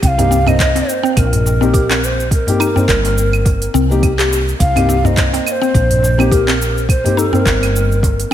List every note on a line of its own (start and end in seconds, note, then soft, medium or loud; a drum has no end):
0.03 0.81 C2 loud
0.03 0.08 G5 loud
0.03 kick loud
0.03 open hi-hat medium
0.03 cabasa soft
0.07 0.49 F5 loud
0.18 0.35 A#3 loud
0.18 0.35 C4 medium
0.18 0.30 C4 medium
0.18 0.35 D#4 medium
0.18 0.35 G4 loud
0.18 open hi-hat soft
0.18 darbuka ka soft
0.18 darbuka dum medium
0.18 cabasa soft
0.31 0.45 C4 medium
0.31 darbuka ka soft
0.31 cabasa medium
0.45 1.57 A#3 medium
0.45 0.59 C4 medium
0.45 1.58 C4 medium
0.45 1.59 D#4 medium
0.45 0.91 D#5 loud
0.45 darbuka dum medium
0.45 cabasa soft
0.45 claves medium
0.50 1.60 C5 medium
0.60 kick loud
0.60 clap medium
0.60 open hi-hat medium
0.60 cabasa soft
0.75 0.88 C4 medium
0.75 open hi-hat soft
0.75 darbuka tek medium
0.75 cabasa soft
0.89 1.20 C5 loud
0.89 cabasa medium
1.03 1.60 C4 loud
1.03 darbuka ka soft
1.03 cabasa soft
1.17 2.52 A#1 loud
1.17 2.06 A#4 loud
1.17 kick loud
1.17 open hi-hat medium
1.17 cabasa soft
1.17 claves medium
1.33 open hi-hat soft
1.33 darbuka dum medium
1.33 cabasa soft
1.46 darbuka tek medium
1.46 cabasa medium
1.61 1.77 A#3 loud
1.61 1.73 C4 medium
1.61 1.78 C4 medium
1.61 1.78 D#4 medium
1.61 1.78 G4 loud
1.61 darbuka tek medium
1.61 cabasa soft
1.74 1.88 G4 medium
1.74 kick loud
1.74 open hi-hat medium
1.74 cabasa soft
1.90 2.02 C4 medium
1.90 clap medium
1.90 open hi-hat soft
1.90 darbuka ka medium
1.90 darbuka tek medium
1.90 cabasa soft
1.90 claves medium
2.04 2.32 C5 medium
2.04 cabasa medium
2.20 cabasa soft
2.31 4.00 A#4 loud
2.31 kick loud
2.31 open hi-hat medium
2.31 cabasa soft
2.47 2.63 A#3 loud
2.47 2.63 C4 medium
2.47 2.64 D#4 medium
2.47 2.64 G4 loud
2.47 open hi-hat soft
2.47 darbuka ka medium
2.47 darbuka dum medium
2.47 cabasa soft
2.60 2.69 D#4 loud
2.60 cabasa medium
2.60 claves medium
2.74 3.86 A#3 medium
2.74 3.87 C4 medium
2.74 2.88 C4 medium
2.74 3.87 D#4 medium
2.74 darbuka dum loud
2.74 cabasa soft
2.78 3.88 C5 medium
2.88 3.66 G1 medium
2.88 3.45 A#4 medium
2.88 kick loud
2.88 clap medium
2.88 open hi-hat medium
2.88 cabasa soft
3.05 open hi-hat soft
3.05 darbuka tek medium
3.05 cabasa soft
3.18 cabasa medium
3.33 darbuka ka soft
3.33 cabasa soft
3.33 claves medium
3.45 kick loud
3.45 open hi-hat medium
3.45 darbuka tek medium
3.45 cabasa soft
3.62 open hi-hat soft
3.62 cabasa soft
3.74 4.52 C2 medium
3.74 3.89 C4 loud
3.74 darbuka ka medium
3.74 cabasa medium
3.90 4.06 A#3 loud
3.90 4.06 C4 medium
3.90 4.07 D#4 medium
3.90 4.07 G4 loud
3.90 cabasa soft
4.03 kick loud
4.03 open hi-hat medium
4.03 cabasa soft
4.03 claves medium
4.19 4.74 G4 medium
4.19 clap medium
4.19 open hi-hat soft
4.19 cabasa soft
4.31 darbuka ka medium
4.31 darbuka tek medium
4.31 cabasa medium
4.49 cabasa soft
4.60 5.38 C2 loud
4.60 5.07 F5 loud
4.60 kick loud
4.60 open hi-hat medium
4.60 cabasa soft
4.75 4.92 A#3 loud
4.75 4.87 C4 medium
4.75 4.92 C4 medium
4.75 4.93 D#4 medium
4.75 4.93 G4 loud
4.75 open hi-hat soft
4.75 darbuka ka medium
4.75 darbuka dum medium
4.75 cabasa soft
4.75 claves medium
4.89 5.04 C4 medium
4.89 darbuka ka soft
4.89 cabasa medium
5.03 6.15 A#3 medium
5.03 6.16 C4 medium
5.03 5.17 C4 medium
5.03 6.16 D#4 medium
5.03 5.47 D#5 loud
5.03 darbuka dum loud
5.03 cabasa soft
5.07 6.17 C5 medium
5.17 kick loud
5.17 clap medium
5.17 open hi-hat medium
5.17 cabasa soft
5.33 5.45 C4 medium
5.33 open hi-hat soft
5.33 darbuka tek medium
5.33 cabasa soft
5.47 5.53 D#5 loud
5.47 cabasa medium
5.47 claves medium
5.52 6.35 C5 loud
5.61 6.17 C4 loud
5.61 darbuka ka soft
5.61 cabasa soft
5.74 7.09 A#1 loud
5.74 kick loud
5.74 open hi-hat medium
5.74 cabasa soft
5.90 open hi-hat soft
5.90 darbuka dum medium
5.90 cabasa soft
6.03 darbuka tek medium
6.03 cabasa medium
6.18 6.34 A#3 loud
6.18 6.35 C4 medium
6.18 6.31 C4 medium
6.18 6.35 D#4 medium
6.18 6.36 G4 loud
6.18 darbuka tek medium
6.18 cabasa soft
6.18 claves medium
6.32 6.46 G4 medium
6.32 6.89 A#4 medium
6.32 kick loud
6.32 open hi-hat medium
6.32 cabasa soft
6.47 6.60 C4 medium
6.47 clap medium
6.47 open hi-hat soft
6.47 darbuka ka medium
6.47 darbuka tek medium
6.47 cabasa soft
6.62 cabasa medium
6.78 cabasa soft
6.89 7.20 C5 loud
6.89 kick loud
6.89 open hi-hat medium
6.89 cabasa soft
6.89 claves medium
7.04 7.20 A#3 loud
7.04 7.21 C4 medium
7.04 7.21 D#4 medium
7.04 7.21 G4 loud
7.04 open hi-hat soft
7.04 darbuka ka medium
7.04 darbuka dum loud
7.04 cabasa soft
7.17 7.26 D#4 loud
7.17 7.32 A4 medium
7.17 cabasa medium
7.31 8.34 A#3 medium
7.31 8.34 C4 medium
7.31 7.45 C4 medium
7.31 8.34 D#4 medium
7.31 8.32 A#4 medium
7.31 darbuka dum medium
7.31 cabasa soft
7.35 8.34 C5 medium
7.45 8.24 G1 medium
7.45 8.01 A#4 medium
7.45 kick loud
7.45 clap medium
7.45 open hi-hat medium
7.45 cabasa soft
7.61 open hi-hat soft
7.61 darbuka tek medium
7.61 cabasa soft
7.61 claves medium
7.76 cabasa medium
7.90 darbuka ka soft
7.90 cabasa soft
8.03 kick loud
8.03 open hi-hat medium
8.03 darbuka tek medium
8.03 cabasa soft
8.20 open hi-hat soft
8.20 cabasa soft